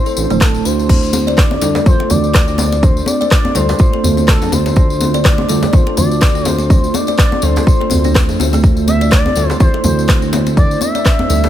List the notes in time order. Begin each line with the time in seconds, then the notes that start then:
Already playing: A3 C4 D4 C5
0.06 A4, tambourine
0.17 A1, tambourine
0.30 D1 A3, mid tom, tambourine
0.40 A4, kick, cross-stick, clap, tambourine
0.54 tambourine
0.65 D2 C5, tambourine
0.79 tambourine
0.89 A3 D4 F4 C5, kick, crash, tambourine, djembe tone, djembe bass
1.03 tambourine
1.13 tambourine, high conga
1.27 D5, tambourine, muted conga
1.37 D5, kick, cross-stick, clap, tambourine
1.51 high conga, djembe tone
1.61 D2 A4, tambourine, muted conga, low conga
1.75 tambourine, djembe slap
1.86 F2 F4 C5, kick, mid tom, tambourine, high conga, djembe tone
2.00 A4, muted conga
2.10 D2 D5, mid tom, tambourine, djembe bass
2.24 tambourine
2.34 kick, cross-stick, clap, tambourine, muted conga
2.48 D4, tambourine
2.58 tambourine, djembe slap, high conga
2.72 tambourine, muted conga
2.82 D4 C5, kick, mid tom, tambourine, djembe tone, djembe bass
2.97 tambourine
3.06 D5, tambourine, high conga
3.21 D5, tambourine, muted conga
3.31 D5, kick, cross-stick, clap, tambourine
3.44 djembe tone, high conga
3.55 D2 A4 C5, tambourine, low conga
3.69 tambourine, djembe slap
3.79 A1 F4, kick, tambourine
3.93 A4, muted conga
4.04 D2, tambourine, djembe tone, high conga, djembe bass
4.17 tambourine, high conga
4.27 A4, kick, cross-stick, clap, tambourine, muted conga, djembe tone
4.42 F2 D4, tambourine, djembe slap
4.52 D2 C5, tambourine, djembe tone, high conga
4.66 tambourine, muted conga, high conga
4.76 D4, kick, tambourine, djembe tone, djembe bass
4.90 tambourine
5.00 tambourine, high conga
5.14 D5, tambourine, muted conga
5.25 D4 D5, kick, cross-stick, clap, tambourine
5.38 high conga, djembe tone
5.49 D2 A4, tambourine, muted conga, low conga
5.63 tambourine, djembe slap
5.73 F2 F4 C5, kick, mid tom, tambourine, high conga, djembe tone
5.87 A4, muted conga
5.97 D2 D5, mid tom, tambourine, djembe bass
6.11 tambourine
6.21 kick, cross-stick, clap, tambourine, muted conga
6.35 D4, tambourine
6.45 C5, tambourine, djembe slap, high conga
6.58 tambourine, muted conga
6.70 D4 C5, kick, mid tom, tambourine, djembe tone, djembe bass
6.84 tambourine
6.94 D5, tambourine, high conga
7.07 D5, tambourine, muted conga
7.18 D4 D5, kick, cross-stick, clap, tambourine
7.32 djembe tone, high conga
7.42 D2 A4 C5, tambourine, low conga
7.56 tambourine, djembe slap
7.67 A1 F4, kick, tambourine
7.81 A4, muted conga
7.90 D2, tambourine, high conga, djembe tone, djembe bass
8.04 D4, tambourine, high conga
8.14 D4, kick, cross-stick, clap, tambourine, muted conga, djembe tone
8.29 F2, tambourine, djembe slap
8.39 D2 F4, tambourine, high conga, djembe tone
8.53 A3, tambourine, muted conga, high conga
8.63 C4 D4 E4, kick, tambourine, djembe tone, djembe bass
8.77 tambourine
8.88 E5, tambourine, high conga
9.01 D5, tambourine, muted conga
9.11 D4 D5, kick, cross-stick, clap, tambourine
9.26 djembe tone, high conga
9.35 D2 A4, tambourine, muted conga, low conga
9.50 tambourine, djembe slap
9.60 D2 E4 C5, kick, mid tom, tambourine, djembe tone, high conga
9.74 A4, muted conga
9.84 D2 C5, mid tom, tambourine, djembe bass
9.99 tambourine
10.08 kick, cross-stick, clap, tambourine, muted conga
10.22 D4, tambourine
10.33 tambourine, djembe slap, high conga
10.47 tambourine, muted conga
10.57 D4 D5, kick, mid tom, tambourine, djembe tone, djembe bass
10.71 tambourine
10.81 E5, tambourine, high conga
10.95 D5, tambourine, muted conga
11.05 D4, kick, cross-stick, clap, tambourine
11.19 djembe tone, high conga
11.30 D2 A4, tambourine, low conga
11.43 tambourine, djembe slap